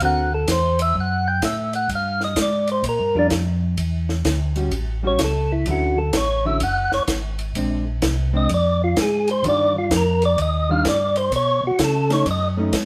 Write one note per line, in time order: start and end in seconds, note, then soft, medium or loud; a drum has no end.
0.00 0.47 D2 medium
0.00 0.29 D3 medium
0.00 0.29 C4 medium
0.00 0.30 F#4 medium
0.00 0.30 A#4 medium
0.00 kick soft
0.00 ride medium
0.05 0.33 F#5 loud
0.34 0.49 A4 medium
0.48 0.94 E2 medium
0.48 0.80 C5 medium
0.48 kick soft
0.48 snare medium
0.48 hi-hat pedal medium
0.48 ride medium
0.79 0.96 E5 loud
0.79 ride medium
0.95 1.41 F#2 medium
0.95 kick soft
1.00 1.28 F#5 medium
1.28 1.43 G5 loud
1.42 1.88 A2 medium
1.42 1.74 E5 medium
1.42 kick soft
1.42 snare medium
1.42 hi-hat pedal medium
1.42 ride medium
1.73 1.90 F#5 loud
1.73 ride medium
1.89 2.35 G2 medium
1.89 kick soft
1.89 ride medium
1.95 2.23 F5 medium
2.21 2.38 D#5 medium
2.21 snare soft
2.36 2.82 G#2 medium
2.36 kick soft
2.36 snare medium
2.36 hi-hat pedal medium
2.36 ride medium
2.42 2.69 D5 medium
2.67 ride soft
2.72 2.85 C5 loud
2.84 2.99 A#2 medium
2.84 kick soft
2.84 ride medium
2.89 3.16 A#4 medium
3.00 3.16 G2 medium
3.15 3.30 F2 medium
3.15 3.29 G3 medium
3.15 3.30 D4 medium
3.15 3.27 D4 loud
3.15 3.30 F4 medium
3.15 3.30 A#4 medium
3.30 3.77 F2 loud
3.30 kick soft
3.30 snare medium
3.30 hi-hat pedal medium
3.30 ride medium
3.77 4.24 E2 medium
3.77 kick soft
3.77 ride medium
4.09 snare soft
4.25 4.71 D2 medium
4.25 kick soft
4.25 snare medium
4.25 hi-hat pedal medium
4.25 ride medium
4.56 4.70 G3 medium
4.56 4.71 C#4 medium
4.56 4.71 F#4 medium
4.56 ride soft
4.71 5.18 A1 medium
4.71 kick soft
4.71 ride medium
5.03 5.18 G3 medium
5.03 5.18 C#4 medium
5.03 5.18 F#4 medium
5.07 5.21 C#5 loud
5.19 5.65 C#2 medium
5.19 kick soft
5.19 snare medium
5.19 hi-hat pedal medium
5.19 ride medium
5.24 5.52 A4 medium
5.52 5.67 E4 medium
5.66 6.12 D2 medium
5.66 5.95 D3 medium
5.66 5.95 F#3 medium
5.66 5.95 C#4 medium
5.66 5.95 E4 medium
5.66 kick soft
5.66 ride medium
5.71 5.99 F#4 medium
5.98 6.14 A4 medium
6.13 6.59 A1 medium
6.13 6.45 C#5 medium
6.13 kick soft
6.13 snare medium
6.13 hi-hat pedal medium
6.13 ride medium
6.45 6.59 D3 medium
6.45 6.59 F#3 medium
6.45 6.60 C#4 medium
6.45 6.60 E4 medium
6.45 6.61 E5 medium
6.60 6.90 F#1 medium
6.60 6.92 F#5 loud
6.60 kick soft
6.60 ride medium
6.92 7.00 F#1 soft
6.92 7.03 C#5 loud
6.92 snare soft
7.08 7.54 G#1 medium
7.08 kick soft
7.08 snare medium
7.08 hi-hat pedal medium
7.08 ride medium
7.39 ride medium
7.55 8.01 A#1 medium
7.55 7.83 G#3 medium
7.55 7.84 C4 medium
7.55 7.84 D4 medium
7.55 kick soft
7.55 ride medium
8.02 8.48 C2 medium
8.02 kick soft
8.02 snare medium
8.02 hi-hat pedal medium
8.02 ride medium
8.33 8.48 G#3 medium
8.33 8.48 C4 medium
8.33 8.48 D4 medium
8.33 8.51 D#5 loud
8.49 8.95 F2 medium
8.49 kick soft
8.49 ride medium
8.54 8.82 D5 medium
8.84 8.98 F4 medium
8.96 9.42 G#2 loud
8.96 kick soft
8.96 snare medium
8.96 hi-hat pedal medium
8.96 ride medium
9.02 9.29 G#4 medium
9.28 9.45 C5 loud
9.28 ride medium
9.43 9.89 G2 medium
9.43 9.71 D#3 medium
9.43 9.72 G3 medium
9.43 9.72 D4 medium
9.43 9.72 F4 medium
9.43 kick soft
9.43 ride medium
9.48 9.76 D5 loud
9.78 9.92 F4 medium
9.91 10.37 F2 medium
9.91 kick soft
9.91 snare medium
9.91 hi-hat pedal medium
9.91 ride medium
9.96 10.24 A#4 medium
10.22 10.39 D5 loud
10.22 ride soft
10.38 10.84 D#2 medium
10.38 10.70 D#5 medium
10.38 kick soft
10.38 ride medium
10.69 10.84 D#3 medium
10.69 10.84 G3 medium
10.69 10.84 D4 medium
10.69 10.84 F4 medium
10.69 10.86 F5 loud
10.85 11.31 G2 medium
10.85 11.17 D5 medium
10.85 kick soft
10.85 snare medium
10.85 hi-hat pedal medium
10.85 ride medium
11.16 11.32 C5 medium
11.16 ride medium
11.32 11.61 B2 medium
11.32 kick soft
11.32 ride medium
11.36 11.64 C#5 loud
11.63 11.71 B2 soft
11.63 11.81 F#4 medium
11.79 12.25 C#3 medium
11.79 kick soft
11.79 snare medium
11.79 hi-hat pedal medium
11.79 ride medium
11.84 12.12 A4 loud
12.10 12.24 A3 medium
12.10 12.24 C#4 medium
12.10 12.25 D#4 medium
12.10 12.27 C#5 loud
12.10 snare soft
12.10 ride medium
12.26 12.72 F#2 medium
12.26 kick soft
12.26 ride medium
12.31 12.48 D#5 loud
12.57 12.72 A3 medium
12.57 12.72 C#4 medium
12.57 12.72 D#4 medium
12.73 12.85 G#2 loud
12.73 kick soft
12.73 snare medium
12.73 hi-hat pedal medium
12.73 ride medium